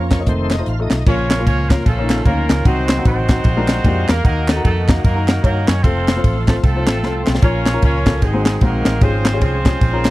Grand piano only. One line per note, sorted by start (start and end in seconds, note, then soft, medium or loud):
0.00 0.11 A#3 medium
0.00 0.11 C#4 medium
0.00 0.11 F4 medium
0.00 0.11 C#5 medium
0.19 0.27 A#3 medium
0.19 0.27 C#4 medium
0.19 0.27 F4 medium
0.19 0.27 D#5 medium
0.58 0.70 A3 medium
0.58 0.70 D#4 medium
0.58 0.70 F4 medium
0.58 0.70 C5 medium
0.79 0.98 A3 medium
0.79 0.99 D#4 medium
0.79 0.99 F4 medium
0.79 0.99 A4 medium
1.07 1.67 A#2 medium
1.07 1.30 A#3 medium
1.07 1.30 C#4 medium
1.07 1.31 F4 medium
1.39 1.58 A#3 medium
1.39 1.58 C#4 medium
1.39 1.58 F4 medium
1.70 1.86 A#3 medium
1.70 1.86 C#4 medium
1.70 1.86 F4 medium
1.98 2.18 A#3 medium
1.98 2.18 C#4 medium
1.98 2.18 D#4 medium
2.26 2.55 A#3 medium
2.26 2.55 C#4 medium
2.26 2.55 D#4 medium
2.66 3.26 C3 medium
2.66 2.89 C4 medium
2.66 2.89 D#4 medium
2.66 2.90 F#4 medium
2.98 3.17 C4 medium
2.98 3.17 D#4 medium
2.98 3.18 F#4 medium
3.30 3.45 C4 medium
3.30 3.45 D#4 medium
3.30 3.45 F#4 medium
3.46 4.06 A#2 medium
3.57 3.76 G#3 medium
3.57 3.77 A#3 medium
3.57 3.77 D4 medium
3.57 3.77 F4 medium
3.57 3.77 A#4 medium
3.85 4.14 G#3 medium
3.85 4.14 A#3 medium
3.85 4.14 D4 medium
3.85 4.14 F4 medium
3.85 4.14 G4 medium
4.23 4.84 D#3 medium
4.23 4.48 D#4 medium
4.23 4.48 F#4 medium
4.23 4.48 A#4 medium
4.56 4.75 D#4 medium
4.56 4.76 F#4 medium
4.56 4.76 A#4 medium
4.88 5.03 D#4 medium
4.88 5.04 F#4 medium
4.88 5.04 A#4 medium
5.15 5.35 D#4 medium
5.15 5.36 F#4 medium
5.15 5.36 A#4 medium
5.43 5.72 D#4 medium
5.43 5.72 F#4 medium
5.43 5.73 C#5 medium
5.84 6.07 C4 medium
5.84 6.07 F4 medium
5.84 6.08 A4 medium
6.16 6.35 C4 medium
6.16 6.35 F4 medium
6.16 6.36 C5 medium
6.47 6.63 C4 medium
6.47 6.63 F4 medium
6.47 6.63 C5 medium
6.75 6.95 C4 medium
6.75 6.95 F4 medium
6.75 6.96 C5 medium
7.04 7.32 C4 medium
7.04 7.32 F4 medium
7.04 7.33 C5 medium
7.43 8.03 A#2 medium
7.43 7.66 C#4 medium
7.43 7.67 F4 medium
7.43 7.67 A#4 medium
7.73 7.93 C#4 medium
7.73 7.93 F4 medium
7.73 7.94 A#4 medium
8.06 8.21 C#4 medium
8.06 8.21 F4 medium
8.06 8.22 A4 medium
8.22 8.82 G#2 medium
8.33 8.53 G#3 medium
8.33 8.53 C4 medium
8.33 8.54 D#4 medium
8.33 8.54 F#4 medium
8.33 8.54 C5 medium
8.62 8.91 G#3 medium
8.62 8.91 C4 medium
8.62 8.91 D#4 medium
8.62 8.91 F#4 medium
8.62 8.91 C5 medium
9.01 9.62 G#2 medium
9.01 9.25 C#4 medium
9.01 9.26 F4 medium
9.01 9.26 G#4 medium
9.34 9.53 C#4 medium
9.34 9.53 F4 medium
9.34 9.53 G#4 medium
9.65 9.81 C#4 medium
9.65 9.81 F4 medium
9.65 9.81 G#4 medium
9.93 10.10 C#4 medium
9.93 10.10 F4 medium
9.93 10.10 A#4 loud